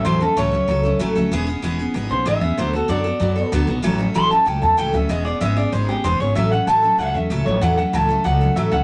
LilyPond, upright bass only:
\new Staff \with { instrumentName = "Upright bass" } { \clef bass \time 4/4 \key a \major \tempo 4 = 190 e,4 cis,4 cis,4 a,,8 d,8 | e,,4 e,,4 gis,,8 b,,8 gis,,8 e,8 | d,4 fis,4 fis,4 d,8 b,,8 | a,,4 a,,4 cis,8 e,8 cis,8 d,8 |
e,,4 gis,,4 gis,,4 e,,8 gis,,8 | a,,4 a,,4 cis,8 e,8 cis,8 a,,8 | e,4 cis,4 cis,4 a,,8 cis,8 | }